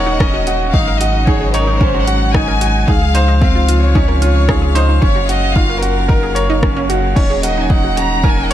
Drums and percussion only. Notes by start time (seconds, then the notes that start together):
0.20 kick, cross-stick
0.47 closed hi-hat
0.74 kick
1.01 closed hi-hat
1.27 kick
1.54 closed hi-hat
1.81 kick
2.07 closed hi-hat
2.34 kick, cross-stick
2.61 closed hi-hat
2.88 kick
3.15 closed hi-hat
3.42 kick
3.69 closed hi-hat
3.95 kick
4.22 closed hi-hat
4.49 kick, cross-stick
4.76 closed hi-hat
5.02 kick
5.29 closed hi-hat
5.56 kick
5.83 closed hi-hat
6.09 kick
6.36 closed hi-hat
6.63 kick, cross-stick
6.90 closed hi-hat
7.16 kick, crash
7.43 closed hi-hat
7.70 kick
7.97 closed hi-hat
8.24 kick